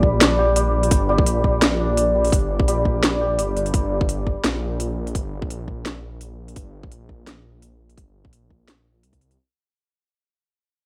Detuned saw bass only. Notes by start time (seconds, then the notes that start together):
Already playing: A#1
0.91 G1
1.18 A#1
2.32 G1
2.59 A#1
3.38 G1
3.56 G1
3.74 G1
4.45 A#1
5.15 G1
5.42 A#1
6.56 G1
6.83 A#1
7.97 G1
8.25 A#1
9.03 C2
9.13 C2